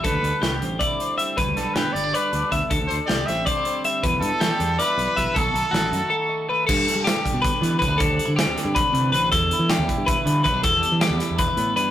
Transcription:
<<
  \new Staff \with { instrumentName = "Clean electric guitar" } { \time 7/8 \key e \minor \tempo 4 = 159 a'4 g'4 d''4 e''8 | b'4 g'4 d''4 e''8 | a'4 g'4 d''4 e''8 | b'4 g'4 d''4 e''8 |
a'4 fis'4 a'4 b'8 | a'4 g'4 b'4 b'8 | a'4 g'4 b'4 b'8 | a'4 g'4 b'4 b'8 |
a'4 g'4 b'4 b'8 | }
  \new Staff \with { instrumentName = "Trumpet" } { \time 7/8 \key e \minor b'4. r2 | r8 a'8 b'8 d''8 b'4 r8 | r8 c''8 d''8 e''8 c''4 r8 | r8 a'4. b'4. |
a'2. r8 | r2. r8 | r2. r8 | r2. r8 |
r2. r8 | }
  \new Staff \with { instrumentName = "Clean electric guitar" } { \time 7/8 \key e \minor << { g4 g8 c'8 e'8 c'8 g8~ | g4 b8 b16 d'16 fis'8 d'8 b8 | r4 g8 c'8 d'16 e'16 c'8 g8~ | g4 g8 d'8 e'8 b16 d'16 g8 |
<dis a dis' fis'>4 a8 dis'8 fis'8 dis'8 a8 | r8 a'8 d'4 g'8 b8 b16 d'16 | <d g c' d'>8 d'16 e'16 c'4 d'8 g8 c'8 | r8 e'8 d'4 e'8 g8 b16 d'16 |
r8 g'8 d'4 d'16 e'16 b8 d'8 | } \\ { d,8 d2. | g,8 d2. | d,8 d2. | e,8 e2. |
b,8 dis2. | g,4. d4 d,4 | d,4. d4 a,4 | e,4. e4 b,4 |
e,4. e4 e,4 | } >> }
  \new Staff \with { instrumentName = "Fingered electric bass" } { \clef bass \time 7/8 \key e \minor d,16 d,16 d,16 r16 c,8 a,,8 r4. | g,,16 d,16 b,,16 r16 g,16 r16 g,,8 r8 d,16 r16 d,16 r16 | d,16 d,16 d,16 r16 c,8 a,,8 r4. | e,16 b,,16 g,16 r16 e16 r16 e,8 r8 b,,16 r16 b,,16 r16 |
b,,16 b,,16 b,,16 r16 a,,8 fis,16 r4. r16 | g,8 r16 g8 g,16 r16 b,8 r16 e8 d,8 | d,8 r16 d8 d,16 r16 g,8 r16 c8 a,,8 | e,8 r16 e8 e,16 r16 g,8 r16 d8 b,,8 |
e,8 r16 e8 e,16 r16 e,8 r16 a,8 g,8 | }
  \new DrumStaff \with { instrumentName = "Drums" } \drummode { \time 7/8 <hh bd>8 hh8 <hh sn>8 hh8 <hh bd>8 hh8 hh8 | <hh bd>8 <hh sn>8 <hh sn>8 hh8 hh8 hh8 <hh bd>8 | <hh bd>8 hh8 <hh sn>8 <hh sn>8 <hh bd>8 hh8 hh8 | <hh bd>8 hh8 <hh sn>8 hh8 <hh sn>8 hh8 <hh bd sn>8 |
<hh bd>8 hh8 <hh sn>8 hh8 r4. | <cymc bd>8 <hh sn>8 <hh sn>8 <hh bd>8 <hh bd>8 <hh sn>8 <hh bd>8 | <hh bd>8 hh8 <hh sn>8 <hh sn>8 <hh bd>8 hh8 hh8 | <hh bd>8 hh8 <hh sn>8 <hh bd>8 <hh bd>8 hh8 <hh bd>8 |
<hh bd>8 hh8 <hh sn>8 <hh sn>8 <hh bd>8 hh8 hh8 | }
>>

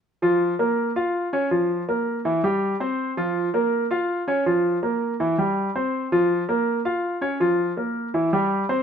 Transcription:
\new Staff \with { instrumentName = "Grand piano" } { \time 4/4 \key bes \dorian \tempo 4 = 163 r8 <f f'>4 <bes bes'>4 <f' f''>4 <des' des''>8 | <f f'>4 <bes bes'>4 <e e'>8 <g g'>4 <c' c''>8~ | <c' c''>8 <f f'>4 <bes bes'>4 <f' f''>4 <des' des''>8 | <f f'>4 <bes bes'>4 <e e'>8 <g g'>4 <c' c''>8~ |
<c' c''>8 <f f'>4 <bes bes'>4 <f' f''>4 <des' des''>8 | <f f'>4 <bes bes'>4 <e e'>8 <g g'>4 <c' c''>8 | }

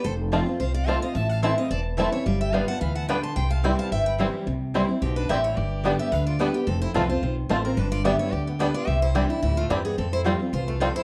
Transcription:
<<
  \new Staff \with { instrumentName = "Steel-string acoustic guitar" } { \time 4/4 \key c \major \tempo 4 = 218 a'8 r4. c''8 d''8 f''8 ees''8 | e''8 f''8 e''8 ees''8 d''8 r8 e''8 des''8 | d''8 e''8 f''8 fis''8 f''8 fis''8 g''8 a''8 | g''8 f''8 d''8 f''8 e''8 g''8 r4 |
r2 g'8 b'8 e''8 des''8 | d''4. e''8 f''8 d''8 b'8 g'8 | a'8 c''8 b'8 c''4 r8 c''8 bes'8 | b'8 d''8 e''8 des''8 d''8 g'8 b'8 d''8 |
e''8 c''8 g'8 e'8 e'8 f'8 g'8 aes'8 | a'8 c''8 r4 c''8 f'8 a'8 c''8 | }
  \new Staff \with { instrumentName = "Mandolin" } { \time 4/4 \key c \major r4 <c' f' c'' a''>8 r4. <c' f' c'' a''>8 r8 | r4 <c' e' c'' a''>8 r4. <c' e' c'' a''>8 r8 | r4 <b f' b' g''>8 r4. <b f' b' g''>8 r8 | r4 <c' e' c'' g''>8 r4. <c' e' c'' g''>8 r8 |
r4 <c' e' c'' g''>8 r4. <c' e' c'' g''>8 r8 | r4 <b g' d'' g''>8 r4. <b g' d'' g''>8 r8 | r4 <c' f' c'' a''>8 r4. <c' f' c'' a''>8 r8 | r4 <b g' d'' g''>8 r4. <b g' d'' g''>8 r8 |
r4 <c' e' d'' g''>8 r4. <c' e' d'' g''>8 r8 | r4 <a f' c'' g''>8 r4. <a f' c'' g''>8 r8 | }
  \new Staff \with { instrumentName = "Fiddle" } { \time 4/4 \key c \major c''8 r4. f''8 f''8 a''8 f''8 | a''8 a''8 a''8 f''8 a''8 r8 a''8 e''8 | f''8 g''8 b''8 a''8 b''8 a''8 b''8 c'''8 | c'''8 a''8 g''8 a''8 g''8 b''8 r4 |
r2 c'8 d'8 g'8 e'8 | g'4. g'8 b'8 f'8 d'8 b8 | c'8 e'8 f'8 f'4 r8 f'8 c'8 | d'8 f'8 g'8 e'8 g'8 b8 d'8 f'8 |
g'8 e'8 c'8 g8 g8 a8 c'8 b8 | c'8 e'8 r4 f'8 a8 c'8 e'8 | }
  \new Staff \with { instrumentName = "Five-string banjo" } { \time 4/4 \key c \major r4 <a c' f'>8 r4. <a c' f'>8 r8 | r4 <a c' e'>8 r4. <a c' e'>8 r8 | r4 <g b d'>8 r4. <g b d'>8 r8 | r4 <g c' e'>8 r4. <g c' e'>8 r8 |
r4 <g c' e'>8 r4. <g c' e'>8 r8 | r4 <g b d'>8 r4. <g b d'>8 r8 | r4 <a c' f'>8 r4. <a c' f'>8 r8 | r4 <g b d'>8 r4. <g b d'>8 r8 |
r4 <g c' d'>8 r4. <g c' d'>8 r8 | r4 <g c' f'>8 r4. <g c' f'>8 r8 | }
  \new Staff \with { instrumentName = "Steel-string acoustic guitar" } { \time 4/4 \key c \major << { r4 <f a c' f'>8 <c' f'>8 r4 <f a c' f'>8 <c' f'>8 | r4 <e a c' e'>8 <c' e'>8 r4 <e a c' e'>8 <c' e'>8 | r4 <g b f'>8 <b f'>8 r2 | r4 <e g c' e'>4 r4 <e g c' e'>4 |
r4 <e g c' e'>8 <c' e'>8 r2 | r4 <d g b g'>8 <b g'>8 r4 <d g b g'>8 <b g'>8 | r4 <f a c' f'>8 <c' f'>8 r4 <f a c' f'>8 <c' f'>8 | r4 <d g b g'>8 <b g'>8 r4 <d g b g'>8 <b g'>8 |
r4 <e g d' e'>8 <d' e'>8 r2 | r4 <f g c' f'>8 <c' f'>8 r2 | } \\ { f,2 c2 | a,2 e,2 | g2 e4 d4 | c2 g,2 |
c2 b,4 a,4 | g,2 d2 | f,2 c2 | g,2 d2 |
c2 a,4 g,4 | f,2 e,4 f,4 | } >> }
  \new Staff \with { instrumentName = "Upright bass" } { \clef bass \time 4/4 \key c \major f,,2 c,2 | a,,2 e,,2 | g,,2 d,2 | c,2 g,,2 |
c,2 b,,4 a,,4 | g,,2 d,2 | f,,4 c,4 b,,4 a,,4 | g,,2 d,2 |
c,2 d,4 e,4 | f,2 c,2 | }
>>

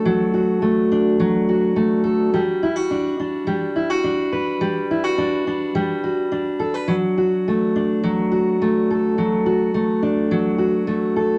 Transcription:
\new Staff \with { instrumentName = "Steel-string acoustic guitar" } { \time 4/4 \key g \major \tempo 4 = 105 <fis a d' fis' a'>8 fis'8 a8 d'8 fis8 fis'8 a8 a'8 | g8 e'16 fis'16 d'8 d'8 g8 e'16 fis'16 d'8 b'8 | g8 e'16 fis'16 d'8 d'8 g8 fis'8 d'8 a'16 b'16 | fis8 fis'8 a8 d'8 fis8 fis'8 a8 a'8 |
fis8 fis'8 a8 d'8 fis8 fis'8 a8 a'8 | }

